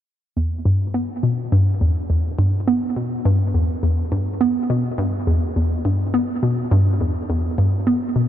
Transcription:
0.37 E2
0.65 G2
0.94 B3
1.23 B2
1.52 G2
1.81 E2
2.10 E2
2.39 G2
2.68 B3
2.96 B2
3.25 G2
3.54 E2
3.83 E2
4.12 G2
4.41 B3
4.70 B2
4.98 G2
5.27 E2
5.56 E2
5.85 G2
6.14 B3
6.43 B2
6.71 G2
7.01 E2
7.30 E2
7.58 G2
7.87 B3
8.16 B2

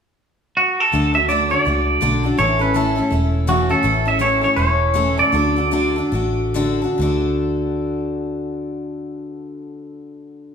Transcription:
0.57 F#4
0.80 A4
0.92 D2 D3 A3 D4 F#4 A4
1.14 D4 F#4 A4 E5
1.29 D3 A3 D4 F#4 A4 D5
1.50 D4 F#4 A4 D5
1.65 C#2 A3 D4 F#4 A4
2.01 B1 D3 A3 D4 F#4 A4
2.23 D4 F#4 A4
2.38 A1 A2 E3 A3 C#4 E4 A4 C#5
2.59 A3 C#4 E4 A4 B4
2.74 A2 E3 A3 C#4 E4 A4
2.96 A3 C#4 E4 A4
3.10 E1 A3 C#4 E4 A4
3.47 A2 E3 A3 C#4 E4 F#4 A4
3.69 A3 C#4 E4 A4
3.83 A1 A2 E3 A3 C#4 E4 A4
4.05 A3 C#4 E4 A4 E5
4.19 A2 E3 A3 C#4 E4 A4 C#5
4.41 A3 C#4 E4 A4 C#5
4.56 E1 A3 C#4 E4 A4 C#5
4.94 A2 E3 A3 C#4 E4 A4
5.17 A3 C#4 E4 A4 D5
5.32 D2 D3 A3 D4 F#4 A4
5.56 D4 F#4 A4
5.71 D3 A3 D4 F#4 A4
5.96 D4 F#4 A4
6.12 A1 A3 D4 F#4 A4
6.54 D3 A3 D4 F#4 A4
6.82 D4 F#4 A4
6.98 D2 D3 A3 D4
7.02 F#4 A4

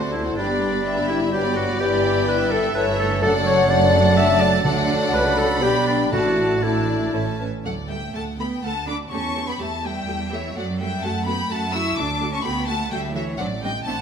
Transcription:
Already playing: D2 A3 C5 D5 C6
0.00 C4 F#4 D5 F#5
0.12 A3 D4 E4 C5 A5
0.25 C4 F#4 D5 F#5
0.36 G1 G2 G3 D4 B4 D5 G5 B5
0.49 B3 G4 D5 B5
0.60 G3 D4 B4 G5
0.72 B3 G4 D5 B5
0.84 G3 D4 B4 E5 G5
0.96 B3 G4 D5 B5
1.07 G3 D4 E4 B4 G5
1.20 B3 G4 D5 B5
1.31 F#3 G3 D4 G4 B4 G5
1.35 D5
1.43 B3 G4 D5 B5
1.55 G3 D4 F#4 B4 G5
1.68 B3 G4 D5 B5
1.79 G1 G2 E3 B3 E4 G4 D5 G5 B5
2.27 B4 E5
2.51 A4
2.75 G1 G2 E3 A3 E4 B4 C#5 E5 A5
2.97 A4
3.22 F#1 F#2 F#3 A3 D4 A4 D5 F#5 A5
3.45 C#5
3.68 F#3 A3 D4 D5 F#5 A5
4.16 E5 A5
4.40 D5
4.64 D2 D3 F#3 A3 D4 D5 F#5 A5
5.13 C#2 C#3 B4 B5
5.36 A4
5.61 B1 B2 G3 B3 D4 G4 D5 G5 B5
5.87 D4
6.11 A1 A2 A3 D4 E4 F#4 D5 A5
6.62 A3 D4 E4 D5 E5 A5
6.89 D5
7.13 A1 A2 A3 C#4 E4 C#5 E5 A5
7.40 B4
7.64 D2 F#3 A3 A4 D5 F#5
7.89 G3 A3 A4 E5 G5
8.14 D2 A3 A4 F#5 A5
8.39 A3 B3 A4 G5 B5
8.62 D2 A3 A4 F#5 A5
8.87 A3 D4 A4 B5 D6
9.11 E2 A3 C#4 G4 A5 C#6
9.36 A3 G4
9.48 B3 G5 B5
9.59 E2 A3 G4 E5 A5
9.83 G3 A3 G4 E5 G5
10.07 E2 A3 G4
10.31 E3 A3 G4 C#5 E5
10.55 F#2 F#3 A3 F#4 D5 F#5
10.79 G3 A3 F#4 E5 G5
11.02 F#2 A3 F#4 F#5 A5
11.26 A3 B3 F#4 G5 B5
11.50 F#2 A3 F#4 F#5 A5
11.72 A3 E4 F#4 C#6 E6
11.97 D2 A3 D4 F#4 A5 D6
12.20 A3 F#4
12.32 C#4 A5 C#6
12.43 D2 A3 B3 F#4 G5 B5
12.67 A3 F#4 F#5 A5
12.91 D2 G3 A3 F#4 E5 G5
13.15 E3 A3 F#4 C#5 E5
13.38 A1 F#3 C4 D4 D5 F#5
13.63 G3 C4 D4 D#5 G5
13.85 A1 A3 C4 D4 F#5 A5

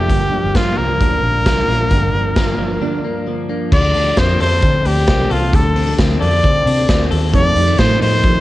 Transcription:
Already playing: F3 A3 D4 G4
0.09 G1 G2 D3 F3 A#3 D4, kick, closed hi-hat
0.32 F3 A#3 D4
0.44 G1
0.54 G2 D3 F3 A#3 D4 F4, kick, snare, closed hi-hat
0.76 C2 F3 A#3 D4 A#4
1.00 D2 G2 D3 F3 A#3 D4, kick, closed hi-hat
1.23 A#1 F3 A#3 D4
1.45 C2 D3 F3 A#3 D4, kick, snare, closed hi-hat
1.68 A#1 F3 A#3 D4
1.91 G1 G2 D3 F3 A#3 D4, kick, closed hi-hat
2.13 G1 F3 A#3 D4
2.35 D3 F3 A#3 D4, kick, snare, closed hi-hat
2.58 F3 A#3 D4
2.80 G2 D3 F3 A#3 D4
3.03 F3 A#3 D4
3.26 D3 F3 A#3 D4
3.49 F3 A#3 D4
3.72 D2 D3 D5, kick, crash
3.94 D2 D4, open hi-hat
4.17 F2 C4 C5, kick, snare, closed hi-hat
4.40 F2 A4 C5, open hi-hat
4.62 D3 C4, kick, closed hi-hat
4.85 D2 D4 G4, open hi-hat
5.08 C4, kick, snare, closed hi-hat
5.30 C2 F4 A4, open hi-hat
5.53 D2 D3 A4, kick, closed hi-hat
5.76 C4, open hi-hat
5.87 D4
5.98 D2 C4, kick, snare, closed hi-hat
6.20 F2 A4 D5, open hi-hat
6.43 D3 C4, kick, closed hi-hat
6.66 C3 D4, open hi-hat
6.89 D2 C4, kick, snare, closed hi-hat
7.11 D#2 A4, open hi-hat
7.33 F2 C3 D#3 A3 D#4 D5, kick, closed hi-hat
7.55 F2 D#3 G3 A3 D#4, open hi-hat
7.67 A3
7.78 F2 A2 C3 D#3 A3 D#4 C5, kick, snare, closed hi-hat
8.00 A2 D#3 A3 D#4 C5, open hi-hat
8.22 C3 D#3 F3 A3 D#4, kick, closed hi-hat

